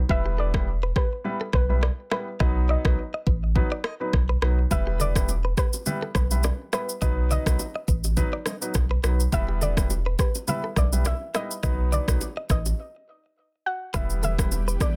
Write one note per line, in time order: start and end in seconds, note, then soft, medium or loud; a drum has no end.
0.09 0.92 E1 loud
0.09 0.50 G3 medium
0.09 0.50 B3 medium
0.09 0.50 E4 medium
0.09 0.50 B4 loud
0.09 0.37 E5 loud
0.09 kick loud
0.26 0.33 G4 medium
0.38 0.48 A4 medium
0.38 0.93 D5 loud
0.54 0.67 G3 medium
0.54 0.67 B3 medium
0.54 0.67 E4 medium
0.54 0.67 B4 medium
0.54 kick medium
0.54 cross-stick loud
0.83 0.91 B4 medium
0.96 1.05 G4 medium
0.96 1.50 B4 medium
0.96 kick medium
0.96 cross-stick medium
1.24 1.40 G3 medium
1.24 1.40 B3 medium
1.24 1.40 E4 medium
1.24 1.40 B4 medium
1.41 1.48 A4 medium
1.53 1.90 B1 medium
1.53 1.63 B4 medium
1.53 2.08 B4 loud
1.53 kick medium
1.53 cross-stick medium
1.69 1.82 G3 medium
1.69 1.82 B3 medium
1.69 1.82 E4 medium
1.69 1.82 B4 medium
1.83 1.92 D5 medium
1.83 cross-stick medium
2.11 2.27 G3 medium
2.11 2.27 B3 medium
2.11 2.27 E4 medium
2.11 2.27 B4 medium
2.11 2.66 B4 medium
2.11 2.21 E5 medium
2.11 cross-stick loud
2.40 2.76 B1 loud
2.40 2.81 F#3 medium
2.40 2.81 B3 medium
2.40 2.81 D#4 medium
2.40 2.81 B4 medium
2.40 2.50 D#5 loud
2.40 kick loud
2.40 cross-stick medium
2.69 2.78 D5 medium
2.69 3.23 D#5 medium
2.85 2.95 B1 medium
2.85 2.97 F#3 medium
2.85 2.98 B3 medium
2.85 2.98 D#4 medium
2.85 2.98 B4 medium
2.85 kick medium
2.85 cross-stick loud
3.14 3.22 D#5 medium
3.27 3.63 A1 medium
3.27 3.36 B4 medium
3.27 kick medium
3.55 3.71 F#3 medium
3.55 3.71 B3 medium
3.55 3.71 D#4 medium
3.55 3.71 B4 medium
3.55 kick medium
3.72 3.85 D5 medium
3.84 3.94 D#5 medium
3.84 cross-stick medium
4.00 4.13 F#3 medium
4.00 4.13 B3 medium
4.00 4.13 D#4 medium
4.00 4.13 B4 medium
4.13 4.37 B1 loud
4.13 kick medium
4.13 cross-stick medium
4.29 4.37 B4 medium
4.42 4.65 B1 medium
4.42 4.57 F#3 medium
4.42 4.58 B3 medium
4.42 4.58 D#4 medium
4.42 4.51 B4 medium
4.42 4.58 B4 medium
4.42 cross-stick loud
4.71 5.54 E1 loud
4.71 5.12 G3 medium
4.71 5.12 B3 medium
4.71 5.12 E4 medium
4.71 5.12 B4 loud
4.71 5.01 E5 loud
4.71 kick loud
4.71 low conga medium
4.71 shaker medium
4.87 4.94 G4 medium
5.00 5.09 A4 medium
5.00 5.54 D5 loud
5.00 low conga medium
5.00 shaker medium
5.15 5.28 G3 medium
5.15 5.28 B3 medium
5.15 5.28 E4 medium
5.15 5.28 B4 medium
5.15 kick medium
5.15 cross-stick loud
5.15 low bongo medium
5.15 shaker medium
5.29 high bongo medium
5.29 shaker medium
5.45 5.52 B4 medium
5.57 5.67 G4 medium
5.57 6.12 B4 medium
5.57 kick medium
5.57 cross-stick medium
5.57 shaker soft
5.73 high bongo soft
5.73 shaker medium
5.86 6.02 G3 medium
5.86 6.02 B3 medium
5.86 6.02 E4 medium
5.86 6.02 B4 medium
5.86 low conga medium
5.86 shaker medium
6.02 6.10 A4 medium
6.15 6.51 B1 medium
6.15 6.25 B4 medium
6.15 6.73 B4 loud
6.15 kick medium
6.15 cross-stick medium
6.15 low bongo medium
6.15 shaker soft
6.31 6.44 G3 medium
6.31 6.44 B3 medium
6.31 6.44 E4 medium
6.31 6.44 B4 medium
6.31 shaker medium
6.43 6.54 D5 medium
6.43 cross-stick medium
6.43 high bongo medium
6.43 low bongo medium
6.43 shaker medium
6.73 6.88 G3 medium
6.73 6.88 B3 medium
6.73 6.88 E4 medium
6.73 6.88 B4 medium
6.73 7.33 B4 medium
6.73 6.82 E5 medium
6.73 cross-stick loud
6.73 shaker soft
6.89 shaker medium
7.01 7.38 B1 loud
7.01 7.42 F#3 medium
7.01 7.43 B3 medium
7.01 7.43 D#4 medium
7.01 7.43 B4 loud
7.01 7.11 D#5 loud
7.01 kick loud
7.01 low conga medium
7.01 shaker medium
7.31 7.40 D5 medium
7.31 7.85 D#5 medium
7.31 low conga medium
7.31 shaker medium
7.46 7.57 B1 loud
7.46 7.59 F#3 medium
7.46 7.59 B3 medium
7.46 7.59 D#4 medium
7.46 7.59 B4 medium
7.46 kick medium
7.46 cross-stick loud
7.46 low bongo medium
7.46 shaker medium
7.59 high bongo medium
7.59 shaker medium
7.76 7.83 D#5 medium
7.88 8.24 A1 medium
7.88 7.98 B4 medium
7.88 kick medium
7.88 shaker medium
8.04 high bongo soft
8.04 shaker medium
8.17 8.32 F#3 medium
8.17 8.32 B3 medium
8.17 8.33 D#4 medium
8.17 8.33 B4 medium
8.17 kick medium
8.17 low conga medium
8.17 shaker medium
8.33 8.46 D5 medium
8.46 8.55 D#5 medium
8.46 cross-stick medium
8.46 low bongo medium
8.46 shaker soft
8.61 8.74 F#3 medium
8.61 8.74 B3 medium
8.61 8.74 D#4 medium
8.61 8.75 B4 medium
8.61 shaker medium
8.74 8.98 B1 loud
8.74 kick loud
8.74 cross-stick medium
8.74 high bongo medium
8.74 low bongo medium
8.74 shaker medium
8.91 8.98 B4 medium
9.03 9.27 B1 medium
9.03 9.19 F#3 medium
9.03 9.19 B3 medium
9.03 9.19 D#4 medium
9.03 9.13 B4 medium
9.03 9.19 B4 medium
9.03 cross-stick loud
9.03 shaker soft
9.20 shaker medium
9.32 10.15 E1 loud
9.32 9.73 G3 medium
9.32 9.73 B3 medium
9.32 9.73 E4 medium
9.32 9.74 B4 loud
9.32 9.63 E5 loud
9.32 kick loud
9.32 low conga medium
9.32 shaker medium
9.49 9.56 G4 medium
9.61 9.71 A4 medium
9.61 10.21 D5 loud
9.61 low conga medium
9.61 shaker medium
9.77 9.90 G3 medium
9.77 9.90 B3 medium
9.77 9.90 E4 medium
9.77 9.90 B4 medium
9.77 kick loud
9.77 cross-stick loud
9.77 low bongo medium
9.77 shaker medium
9.90 high bongo medium
9.90 shaker medium
10.06 10.14 B4 medium
10.19 10.28 G4 medium
10.19 10.49 B4 medium
10.19 kick medium
10.19 cross-stick medium
10.19 shaker soft
10.35 high bongo medium
10.35 shaker medium
10.47 10.63 G3 medium
10.47 10.63 B3 medium
10.47 10.63 E4 medium
10.47 10.63 B4 medium
10.47 10.75 E5 loud
10.47 low conga medium
10.47 shaker medium
10.64 10.71 A4 medium
10.76 11.13 B1 medium
10.76 10.86 B4 medium
10.76 11.07 D5 medium
10.76 kick medium
10.76 cross-stick medium
10.76 low bongo medium
10.76 shaker medium
10.92 11.05 G3 medium
10.92 11.05 B3 medium
10.92 11.05 E4 medium
10.92 11.05 B4 medium
10.92 shaker medium
11.05 11.15 D5 medium
11.05 11.36 E5 loud
11.05 cross-stick medium
11.05 high bongo medium
11.05 low bongo medium
11.05 shaker medium
11.34 11.50 G3 medium
11.34 11.50 B3 medium
11.34 11.50 E4 medium
11.34 11.50 B4 medium
11.34 11.94 D#5 loud
11.34 11.44 E5 medium
11.34 cross-stick loud
11.34 shaker soft
11.51 shaker medium
11.63 11.99 B1 loud
11.63 12.04 F#3 medium
11.63 12.04 B3 medium
11.63 12.04 D#4 medium
11.63 12.04 B4 medium
11.63 11.73 D#5 loud
11.63 kick loud
11.63 cross-stick medium
11.63 low conga medium
11.63 shaker medium
11.92 12.01 D5 medium
11.92 12.46 D5 loud
11.92 low conga medium
11.92 shaker medium
12.08 12.18 B1 loud
12.08 12.20 F#3 medium
12.08 12.21 B3 medium
12.08 12.21 D#4 medium
12.08 12.21 B4 medium
12.08 kick loud
12.08 cross-stick loud
12.08 low bongo medium
12.08 shaker medium
12.21 high bongo medium
12.21 shaker medium
12.37 12.45 D#5 medium
12.50 12.73 A1 medium
12.50 12.59 B4 medium
12.50 13.62 D#5 medium
12.50 kick medium
12.50 cross-stick medium
12.50 high bongo medium
12.50 shaker medium
12.66 high bongo soft
12.66 shaker medium
13.66 13.95 F#5 loud
13.94 14.77 E1 loud
13.94 14.96 E3 medium
13.94 14.35 G3 medium
13.94 14.96 G3 medium
13.94 14.35 B3 medium
13.94 14.96 B3 medium
13.94 14.35 E4 medium
13.94 14.96 G4 medium
13.94 14.03 B4 loud
13.94 14.35 B4 medium
13.94 14.23 E5 loud
13.94 kick loud
13.94 cross-stick medium
13.94 low conga medium
13.94 shaker medium
14.10 shaker medium
14.23 14.32 A4 medium
14.23 14.77 E5 loud
14.23 low bongo medium
14.23 low conga medium
14.23 shaker medium
14.39 14.51 G3 medium
14.39 14.51 B3 medium
14.39 14.51 E4 medium
14.39 14.52 B4 medium
14.39 kick loud
14.39 cross-stick loud
14.39 low bongo medium
14.39 shaker medium
14.52 high bongo medium
14.52 shaker medium
14.68 14.75 B4 medium
14.68 shaker medium
14.80 14.96 D5 medium
14.80 kick medium
14.80 cross-stick medium
14.80 high bongo medium
14.80 shaker soft